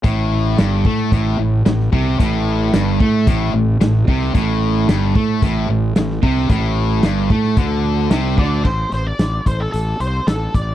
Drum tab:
CC |----------------|----------------|----------------|----------------|
HH |x---x---x---x---|x---x---x---x---|x---x---x---x---|x---x---x---x---|
SD |----o-------oo--|----o-------o--o|----o-------oo-o|----o--o----oo--|
BD |o-----o-o-----o-|o-----o-o-----o-|o-----o-o-----o-|o-----o-o-----o-|

CC |x---------------|
HH |--x-x-x-x-x-x-x-|
SD |----o-------o---|
BD |o-----o-------o-|